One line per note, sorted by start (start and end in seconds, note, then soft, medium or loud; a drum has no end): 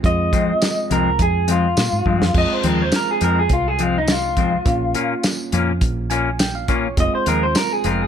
0.03 0.31 F2 loud
0.03 2.31 G#3 medium
0.03 2.31 C4 medium
0.03 2.32 F4 medium
0.03 0.89 D#5 loud
0.03 kick medium
0.03 closed hi-hat medium
0.33 0.51 F2 medium
0.33 0.51 F3 medium
0.33 0.51 G#3 medium
0.33 0.51 C4 medium
0.33 kick medium
0.33 closed hi-hat medium
0.62 snare loud
0.62 closed hi-hat medium
0.62 tambourine loud
0.90 1.18 C2 medium
0.90 1.08 F2 medium
0.90 1.09 F3 medium
0.90 1.09 G#3 medium
0.90 1.09 C4 medium
0.90 1.20 A#4 medium
0.90 closed hi-hat medium
1.19 1.73 F2 loud
1.19 1.49 G#4 medium
1.19 kick medium
1.19 closed hi-hat medium
1.48 1.66 F2 medium
1.48 1.66 F3 medium
1.48 1.67 G#3 medium
1.48 1.67 C4 medium
1.48 2.34 F4 medium
1.48 closed hi-hat medium
1.77 1.91 A#2 medium
1.77 snare loud
1.77 closed hi-hat medium
1.77 tambourine loud
1.93 2.05 G#2 medium
2.06 2.24 F2 medium
2.06 2.20 G2 medium
2.06 2.24 F3 medium
2.06 2.24 G#3 medium
2.06 2.25 C4 medium
2.06 kick medium
2.21 2.34 F2 medium
2.21 snare medium
2.34 2.49 F2 medium
2.34 4.62 G#3 medium
2.34 4.62 C4 medium
2.34 4.63 F4 medium
2.34 2.53 D#5 medium
2.34 kick medium
2.34 crash loud
2.50 2.67 C5 medium
2.50 muted fingered electric bass stroke soft
2.63 2.91 D#2 medium
2.63 2.82 F2 medium
2.63 2.82 F3 medium
2.63 2.82 G#3 medium
2.63 2.82 C4 medium
2.63 2.82 A#4 medium
2.63 closed hi-hat medium
2.82 2.94 C5 medium
2.92 snare loud
2.92 closed hi-hat medium
2.92 tambourine loud
2.96 3.09 A#4 medium
3.11 3.23 G#4 medium
3.21 3.40 F2 medium
3.21 3.49 F2 medium
3.21 3.40 F3 medium
3.21 3.40 G#3 medium
3.21 3.40 C4 medium
3.21 3.38 A#4 medium
3.21 closed hi-hat medium
3.39 3.51 G#4 medium
3.49 4.62 C2 loud
3.49 3.68 F4 medium
3.49 kick medium
3.49 closed hi-hat medium
3.68 3.83 G#4 medium
3.79 3.97 F2 medium
3.79 3.98 F3 medium
3.79 3.98 G#3 medium
3.79 3.98 C4 medium
3.79 3.96 F4 medium
3.79 closed hi-hat medium
3.98 4.11 D#4 medium
4.08 5.22 F4 medium
4.08 snare loud
4.08 closed hi-hat medium
4.08 tambourine loud
4.37 4.55 F2 medium
4.37 4.55 F3 medium
4.37 4.56 G#3 medium
4.37 4.56 C4 medium
4.37 kick medium
4.37 closed hi-hat medium
4.65 4.93 A#1 loud
4.65 6.93 A#3 medium
4.65 6.94 C#4 medium
4.65 6.94 F4 medium
4.65 kick loud
4.65 closed hi-hat medium
4.95 5.13 A#2 medium
4.95 5.13 A#3 medium
4.95 5.14 C#4 medium
4.95 5.14 F4 medium
4.95 closed hi-hat medium
5.23 snare loud
5.23 closed hi-hat medium
5.23 tambourine loud
5.52 5.80 F2 medium
5.52 5.71 A#2 medium
5.52 5.71 A#3 medium
5.52 5.72 C#4 loud
5.52 5.72 F4 loud
5.52 closed hi-hat medium
5.81 6.93 A#1 medium
5.81 kick medium
5.81 closed hi-hat medium
6.10 6.29 A#2 medium
6.10 6.29 A#3 medium
6.10 6.29 C#4 medium
6.10 6.30 F4 medium
6.10 6.37 G#5 medium
6.10 closed hi-hat medium
6.39 6.54 G5 medium
6.39 snare loud
6.39 closed hi-hat medium
6.39 tambourine loud
6.55 6.68 F5 medium
6.68 6.87 A#2 medium
6.68 6.87 A#3 loud
6.68 6.87 C#4 loud
6.68 6.87 F4 loud
6.68 6.96 C#5 medium
6.68 kick medium
6.68 closed hi-hat medium
6.97 7.12 F1 loud
6.97 8.07 G#3 medium
6.97 8.07 C4 medium
6.97 8.07 F4 medium
6.97 7.14 D#5 medium
6.97 kick medium
6.97 closed hi-hat medium
7.15 7.27 C5 medium
7.26 7.54 D#2 medium
7.26 7.45 F3 medium
7.26 7.45 G#3 medium
7.26 7.45 C4 medium
7.26 7.45 F4 medium
7.26 7.43 A#4 medium
7.26 closed hi-hat medium
7.43 7.56 C5 medium
7.55 7.73 A#4 medium
7.55 snare loud
7.55 closed hi-hat medium
7.55 tambourine loud
7.72 7.86 G#4 medium
7.84 8.07 F1 medium
7.84 8.03 F3 medium
7.84 8.03 G#3 medium
7.84 8.03 C4 medium
7.84 8.03 F4 medium
7.84 8.02 A#4 medium
7.84 closed hi-hat medium
8.02 8.07 G#4 medium